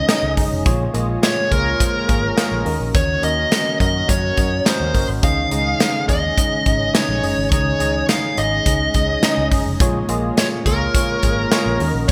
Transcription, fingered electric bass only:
0.23 C#2
0.37 F#1
0.51 F1
0.66 A#1
0.94 A#1
1.51 C#2
2.09 G#1
2.52 A#1
2.66 D#2
2.80 A#1
2.94 D#2
3.23 D#2
3.80 F#2
4.09 F#2
4.37 F#2
4.80 D#2
4.94 F#1
5.08 G#1
5.23 C#2
5.51 C#2
6.09 D#2
6.66 G#1
7.08 A#1
7.23 F#1
7.37 G#1
7.52 C#2
7.80 C#2
8.37 G#1
8.66 C#2
8.94 C#2
9.37 C#2
9.51 F#1
9.66 F1
9.80 A#1
10.08 A#1
10.66 C#2
11.23 G#1
11.66 A#1
11.80 D#2
11.94 A#1
12.09 D#2

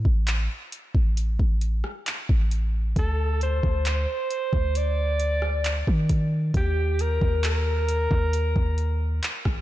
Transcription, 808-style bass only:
0.05 A1
0.95 A1
1.40 A1
2.30 A1
2.96 D2
3.64 D2
4.53 D2
5.88 D#3
6.55 D#2
7.22 D#2
8.11 D#2
8.56 D#2
9.46 G#1

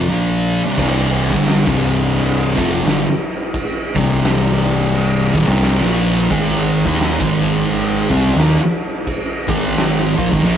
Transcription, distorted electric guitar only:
0.09 A#2 F3 A#3
0.64 C2 G2
0.78 C2 G2 C3
1.33 G2 D3 G3
1.66 C2 G2 C3
2.56 F2 C3 F3
2.84 G2 D3
3.96 C2 G2 C3
5.34 D#2 A#2
5.46 C2 G2 C3
5.81 A#2 F3 A#3
6.30 G#2 D#3 G#3
6.86 D#3 A#3 D#4
7.20 G#2 D#3 G#3
8.09 C3 G3 C4
8.37 D#3 A#3
9.48 G#2 D#3 G#3
10.17 A#2 F3
10.30 G#2 D#3
10.44 A#2 F3 A#3

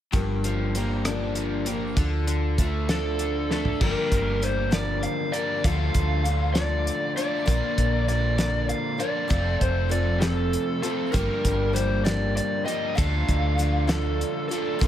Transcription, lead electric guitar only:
2.90 A4
3.52 A4
3.82 A#4
4.43 C5
4.74 D5
5.03 F5
5.32 D5
5.65 F5
6.54 D5
7.17 D5
8.09 D5
8.69 F5
9.00 D5
9.62 C5
9.91 D5
10.20 A4
10.83 A4
11.12 A#4
11.74 C5
12.05 D5
12.36 D5
12.65 D#5
12.95 F5
13.89 A4
14.48 A4

